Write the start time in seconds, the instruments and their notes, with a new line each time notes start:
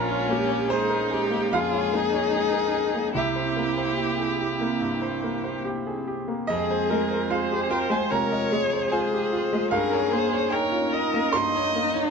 Already playing: grand piano A#1 A#4, analog synth pad G#3 A#3 C#4, violin C#4, viola F4
0.09 grand piano C#5
0.29 grand piano A#3, viola G4
0.49 grand piano C#5
0.68 violin D#4, grand piano G#4 C5, viola G#4
0.89 grand piano A#4
1.10 viola G4, grand piano G#4
1.31 grand piano A#3
1.52 grand piano F2 F5, viola F4, violin G#4
1.72 grand piano C#5
1.93 grand piano A#3, viola D#4
2.13 grand piano C#5
2.33 grand piano G#4
2.53 grand piano A#4
2.74 grand piano G#4
2.94 grand piano A#3
3.15 grand piano C2 E5, analog synth pad A#3 C4 G4, viola E4, violin G4
3.36 grand piano C5
3.56 grand piano A#3
3.78 grand piano C5
3.98 grand piano G4
4.19 grand piano G#4
4.40 grand piano G4
4.61 grand piano A#3
4.81 grand piano G2
5.02 grand piano C5
5.24 grand piano A#3
5.44 grand piano C5
5.65 grand piano G4
5.87 grand piano G#4
6.07 grand piano G4
6.28 grand piano A#3
6.47 grand piano F2 D#5, analog synth pad G#3 F4, violin G#4, viola G#4
6.71 grand piano C5
6.90 grand piano G#3, viola A#4
7.11 grand piano C5
7.30 grand piano F4 F5, violin G#4, viola C5
7.52 grand piano G4
7.70 grand piano F4 G5, violin A#4
7.90 grand piano G#3 G#5, violin C5
8.10 grand piano C3 A#5, viola A#4, violin C#5
8.32 grand piano D#5
8.51 grand piano G#3, viola G#4
8.73 grand piano C5
8.92 grand piano F4 G#5, violin C5
9.13 grand piano G4
9.33 grand piano F4
9.53 grand piano G#3
9.70 grand piano G2 F5, analog synth pad A#3 C#4 D#4, violin G#4, viola A#4
9.93 grand piano C#5
10.12 grand piano A#3, viola C5
10.33 grand piano C#5
10.50 grand piano D#4 G5, violin A#4, viola C#5
10.72 grand piano F4
10.92 grand piano D#4, viola D#5
11.14 grand piano A#3
11.33 grand piano G2 C6, viola D#4, violin D#5
11.56 grand piano C#5
11.75 grand piano A#3
11.94 grand piano C#5